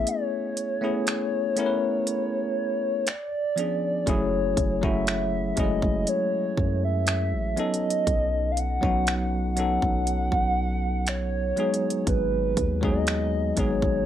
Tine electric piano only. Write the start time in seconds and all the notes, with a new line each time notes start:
Already playing: A3 B3 C#4 E4 G#4
0.81 A3 B3 C#4 E4 G#4
1.56 A3 B3 C#4 E4 A#4
1.66 B4
3.56 F3 B3 C#4 D4 G#4
4.06 F#3 A3 C#4 E4 G#4
4.81 F#3 A3 C#4 E4 F#4
5.56 F#3 G#3 C#4 E4 G#4
5.64 A3
7.56 F#3 B3 C#4 D#4 A4
8.81 F#3 B3 C#4 D#4 F#4
9.56 F#3 B3 C#4 D#4 A4
11.56 F#3 G#3 B3 D#4 G#4
12.81 F#3 G#3 B3 D#4 G#4
13.56 F#3 G#3 B3 D#4 G#4